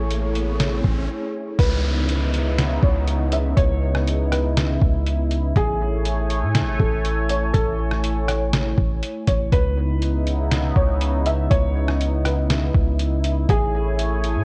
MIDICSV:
0, 0, Header, 1, 7, 480
1, 0, Start_track
1, 0, Key_signature, 4, "minor"
1, 0, Tempo, 495868
1, 1539, Time_signature, 4, 2, 24, 8
1, 13979, End_track
2, 0, Start_track
2, 0, Title_t, "Felt piano"
2, 0, Program_c, 0, 0
2, 1543, Note_on_c, 0, 71, 95
2, 2702, Note_off_c, 0, 71, 0
2, 2746, Note_on_c, 0, 73, 83
2, 3194, Note_off_c, 0, 73, 0
2, 3225, Note_on_c, 0, 76, 82
2, 3450, Note_off_c, 0, 76, 0
2, 3457, Note_on_c, 0, 73, 101
2, 4139, Note_off_c, 0, 73, 0
2, 4179, Note_on_c, 0, 71, 67
2, 4407, Note_off_c, 0, 71, 0
2, 5387, Note_on_c, 0, 68, 106
2, 6544, Note_off_c, 0, 68, 0
2, 6579, Note_on_c, 0, 69, 91
2, 7030, Note_off_c, 0, 69, 0
2, 7061, Note_on_c, 0, 73, 82
2, 7288, Note_off_c, 0, 73, 0
2, 7292, Note_on_c, 0, 69, 105
2, 7977, Note_off_c, 0, 69, 0
2, 8016, Note_on_c, 0, 73, 67
2, 8939, Note_off_c, 0, 73, 0
2, 8980, Note_on_c, 0, 73, 86
2, 9208, Note_off_c, 0, 73, 0
2, 9220, Note_on_c, 0, 71, 97
2, 10381, Note_off_c, 0, 71, 0
2, 10426, Note_on_c, 0, 73, 84
2, 10874, Note_off_c, 0, 73, 0
2, 10903, Note_on_c, 0, 76, 89
2, 11129, Note_off_c, 0, 76, 0
2, 11137, Note_on_c, 0, 73, 103
2, 11819, Note_off_c, 0, 73, 0
2, 11862, Note_on_c, 0, 71, 67
2, 12089, Note_off_c, 0, 71, 0
2, 13066, Note_on_c, 0, 68, 108
2, 13979, Note_off_c, 0, 68, 0
2, 13979, End_track
3, 0, Start_track
3, 0, Title_t, "Analog synth pad"
3, 0, Program_c, 1, 89
3, 0, Note_on_c, 1, 57, 79
3, 0, Note_on_c, 1, 64, 72
3, 0, Note_on_c, 1, 68, 68
3, 0, Note_on_c, 1, 73, 86
3, 1500, Note_off_c, 1, 57, 0
3, 1500, Note_off_c, 1, 64, 0
3, 1500, Note_off_c, 1, 68, 0
3, 1501, Note_off_c, 1, 73, 0
3, 1539, Note_on_c, 1, 49, 81
3, 1539, Note_on_c, 1, 59, 72
3, 1539, Note_on_c, 1, 63, 69
3, 1540, Note_on_c, 1, 64, 85
3, 5340, Note_off_c, 1, 63, 0
3, 5341, Note_off_c, 1, 49, 0
3, 5341, Note_off_c, 1, 59, 0
3, 5379, Note_on_c, 1, 80, 70
3, 5380, Note_on_c, 1, 57, 77
3, 5380, Note_on_c, 1, 73, 88
3, 9181, Note_off_c, 1, 57, 0
3, 9181, Note_off_c, 1, 64, 0
3, 9181, Note_off_c, 1, 73, 0
3, 9181, Note_off_c, 1, 80, 0
3, 9219, Note_on_c, 1, 59, 69
3, 9219, Note_on_c, 1, 64, 88
3, 9220, Note_on_c, 1, 49, 81
3, 9220, Note_on_c, 1, 63, 74
3, 13021, Note_off_c, 1, 49, 0
3, 13021, Note_off_c, 1, 59, 0
3, 13021, Note_off_c, 1, 63, 0
3, 13058, Note_on_c, 1, 80, 73
3, 13059, Note_on_c, 1, 57, 79
3, 13059, Note_on_c, 1, 73, 82
3, 13979, Note_off_c, 1, 57, 0
3, 13979, Note_off_c, 1, 64, 0
3, 13979, Note_off_c, 1, 73, 0
3, 13979, Note_off_c, 1, 80, 0
3, 13979, End_track
4, 0, Start_track
4, 0, Title_t, "808-style bass"
4, 0, Program_c, 2, 38
4, 0, Note_on_c, 2, 33, 111
4, 780, Note_off_c, 2, 33, 0
4, 817, Note_on_c, 2, 33, 103
4, 1048, Note_off_c, 2, 33, 0
4, 1539, Note_on_c, 2, 37, 110
4, 2700, Note_off_c, 2, 37, 0
4, 2738, Note_on_c, 2, 37, 102
4, 3429, Note_off_c, 2, 37, 0
4, 3459, Note_on_c, 2, 37, 112
4, 4620, Note_off_c, 2, 37, 0
4, 4657, Note_on_c, 2, 37, 103
4, 5349, Note_off_c, 2, 37, 0
4, 5378, Note_on_c, 2, 33, 106
4, 6221, Note_on_c, 2, 45, 103
4, 6235, Note_off_c, 2, 33, 0
4, 6401, Note_on_c, 2, 33, 97
4, 6415, Note_off_c, 2, 45, 0
4, 6571, Note_off_c, 2, 33, 0
4, 6577, Note_on_c, 2, 33, 105
4, 7269, Note_off_c, 2, 33, 0
4, 7298, Note_on_c, 2, 33, 109
4, 8460, Note_off_c, 2, 33, 0
4, 8497, Note_on_c, 2, 33, 103
4, 8729, Note_off_c, 2, 33, 0
4, 8979, Note_on_c, 2, 33, 102
4, 9210, Note_off_c, 2, 33, 0
4, 9218, Note_on_c, 2, 37, 108
4, 10380, Note_off_c, 2, 37, 0
4, 10418, Note_on_c, 2, 37, 98
4, 11110, Note_off_c, 2, 37, 0
4, 11139, Note_on_c, 2, 37, 114
4, 12300, Note_off_c, 2, 37, 0
4, 12338, Note_on_c, 2, 37, 99
4, 13029, Note_off_c, 2, 37, 0
4, 13059, Note_on_c, 2, 33, 106
4, 13898, Note_on_c, 2, 45, 106
4, 13912, Note_off_c, 2, 33, 0
4, 13979, Note_off_c, 2, 45, 0
4, 13979, End_track
5, 0, Start_track
5, 0, Title_t, "Downlifter"
5, 0, Program_c, 3, 103
5, 1539, Note_on_c, 3, 60, 84
5, 5379, Note_off_c, 3, 60, 0
5, 13979, End_track
6, 0, Start_track
6, 0, Title_t, "Riser"
6, 0, Program_c, 4, 103
6, 0, Note_on_c, 4, 60, 81
6, 1059, Note_off_c, 4, 60, 0
6, 13979, End_track
7, 0, Start_track
7, 0, Title_t, "Drums"
7, 100, Note_on_c, 9, 42, 81
7, 197, Note_off_c, 9, 42, 0
7, 340, Note_on_c, 9, 42, 63
7, 437, Note_off_c, 9, 42, 0
7, 580, Note_on_c, 9, 38, 109
7, 581, Note_on_c, 9, 42, 80
7, 677, Note_off_c, 9, 38, 0
7, 678, Note_off_c, 9, 42, 0
7, 817, Note_on_c, 9, 36, 91
7, 914, Note_off_c, 9, 36, 0
7, 1539, Note_on_c, 9, 36, 108
7, 1539, Note_on_c, 9, 42, 65
7, 1635, Note_off_c, 9, 36, 0
7, 1636, Note_off_c, 9, 42, 0
7, 2021, Note_on_c, 9, 42, 85
7, 2117, Note_off_c, 9, 42, 0
7, 2261, Note_on_c, 9, 42, 69
7, 2358, Note_off_c, 9, 42, 0
7, 2501, Note_on_c, 9, 38, 120
7, 2502, Note_on_c, 9, 42, 85
7, 2597, Note_off_c, 9, 38, 0
7, 2599, Note_off_c, 9, 42, 0
7, 2737, Note_on_c, 9, 36, 94
7, 2834, Note_off_c, 9, 36, 0
7, 2980, Note_on_c, 9, 42, 76
7, 3077, Note_off_c, 9, 42, 0
7, 3218, Note_on_c, 9, 42, 91
7, 3314, Note_off_c, 9, 42, 0
7, 3459, Note_on_c, 9, 36, 114
7, 3460, Note_on_c, 9, 42, 64
7, 3556, Note_off_c, 9, 36, 0
7, 3557, Note_off_c, 9, 42, 0
7, 3821, Note_on_c, 9, 37, 97
7, 3917, Note_off_c, 9, 37, 0
7, 3942, Note_on_c, 9, 42, 81
7, 4038, Note_off_c, 9, 42, 0
7, 4178, Note_on_c, 9, 37, 98
7, 4182, Note_on_c, 9, 42, 68
7, 4275, Note_off_c, 9, 37, 0
7, 4278, Note_off_c, 9, 42, 0
7, 4421, Note_on_c, 9, 38, 110
7, 4422, Note_on_c, 9, 42, 85
7, 4518, Note_off_c, 9, 38, 0
7, 4519, Note_off_c, 9, 42, 0
7, 4658, Note_on_c, 9, 36, 93
7, 4755, Note_off_c, 9, 36, 0
7, 4900, Note_on_c, 9, 42, 80
7, 4996, Note_off_c, 9, 42, 0
7, 5137, Note_on_c, 9, 42, 91
7, 5234, Note_off_c, 9, 42, 0
7, 5379, Note_on_c, 9, 36, 112
7, 5379, Note_on_c, 9, 42, 67
7, 5476, Note_off_c, 9, 36, 0
7, 5476, Note_off_c, 9, 42, 0
7, 5860, Note_on_c, 9, 42, 81
7, 5957, Note_off_c, 9, 42, 0
7, 6101, Note_on_c, 9, 42, 69
7, 6197, Note_off_c, 9, 42, 0
7, 6339, Note_on_c, 9, 38, 119
7, 6340, Note_on_c, 9, 42, 83
7, 6435, Note_off_c, 9, 38, 0
7, 6437, Note_off_c, 9, 42, 0
7, 6577, Note_on_c, 9, 36, 94
7, 6674, Note_off_c, 9, 36, 0
7, 6818, Note_on_c, 9, 42, 80
7, 6915, Note_off_c, 9, 42, 0
7, 7057, Note_on_c, 9, 42, 92
7, 7154, Note_off_c, 9, 42, 0
7, 7298, Note_on_c, 9, 42, 65
7, 7299, Note_on_c, 9, 36, 114
7, 7395, Note_off_c, 9, 36, 0
7, 7395, Note_off_c, 9, 42, 0
7, 7659, Note_on_c, 9, 37, 96
7, 7756, Note_off_c, 9, 37, 0
7, 7781, Note_on_c, 9, 42, 83
7, 7878, Note_off_c, 9, 42, 0
7, 8019, Note_on_c, 9, 37, 100
7, 8022, Note_on_c, 9, 42, 67
7, 8116, Note_off_c, 9, 37, 0
7, 8119, Note_off_c, 9, 42, 0
7, 8261, Note_on_c, 9, 38, 117
7, 8262, Note_on_c, 9, 42, 80
7, 8358, Note_off_c, 9, 38, 0
7, 8359, Note_off_c, 9, 42, 0
7, 8497, Note_on_c, 9, 36, 91
7, 8594, Note_off_c, 9, 36, 0
7, 8739, Note_on_c, 9, 42, 78
7, 8836, Note_off_c, 9, 42, 0
7, 8978, Note_on_c, 9, 42, 94
7, 8979, Note_on_c, 9, 36, 99
7, 9074, Note_off_c, 9, 42, 0
7, 9076, Note_off_c, 9, 36, 0
7, 9219, Note_on_c, 9, 36, 106
7, 9220, Note_on_c, 9, 42, 65
7, 9316, Note_off_c, 9, 36, 0
7, 9317, Note_off_c, 9, 42, 0
7, 9701, Note_on_c, 9, 42, 85
7, 9797, Note_off_c, 9, 42, 0
7, 9942, Note_on_c, 9, 42, 67
7, 10038, Note_off_c, 9, 42, 0
7, 10181, Note_on_c, 9, 38, 116
7, 10182, Note_on_c, 9, 42, 83
7, 10278, Note_off_c, 9, 38, 0
7, 10279, Note_off_c, 9, 42, 0
7, 10418, Note_on_c, 9, 36, 97
7, 10515, Note_off_c, 9, 36, 0
7, 10659, Note_on_c, 9, 42, 80
7, 10756, Note_off_c, 9, 42, 0
7, 10898, Note_on_c, 9, 42, 90
7, 10995, Note_off_c, 9, 42, 0
7, 11139, Note_on_c, 9, 36, 113
7, 11140, Note_on_c, 9, 42, 66
7, 11236, Note_off_c, 9, 36, 0
7, 11236, Note_off_c, 9, 42, 0
7, 11501, Note_on_c, 9, 37, 99
7, 11598, Note_off_c, 9, 37, 0
7, 11622, Note_on_c, 9, 42, 79
7, 11719, Note_off_c, 9, 42, 0
7, 11858, Note_on_c, 9, 37, 95
7, 11862, Note_on_c, 9, 42, 71
7, 11955, Note_off_c, 9, 37, 0
7, 11959, Note_off_c, 9, 42, 0
7, 12100, Note_on_c, 9, 38, 118
7, 12101, Note_on_c, 9, 42, 82
7, 12197, Note_off_c, 9, 38, 0
7, 12198, Note_off_c, 9, 42, 0
7, 12338, Note_on_c, 9, 36, 96
7, 12434, Note_off_c, 9, 36, 0
7, 12579, Note_on_c, 9, 42, 76
7, 12676, Note_off_c, 9, 42, 0
7, 12818, Note_on_c, 9, 42, 92
7, 12915, Note_off_c, 9, 42, 0
7, 13059, Note_on_c, 9, 36, 115
7, 13060, Note_on_c, 9, 42, 62
7, 13156, Note_off_c, 9, 36, 0
7, 13156, Note_off_c, 9, 42, 0
7, 13541, Note_on_c, 9, 42, 83
7, 13638, Note_off_c, 9, 42, 0
7, 13782, Note_on_c, 9, 42, 69
7, 13878, Note_off_c, 9, 42, 0
7, 13979, End_track
0, 0, End_of_file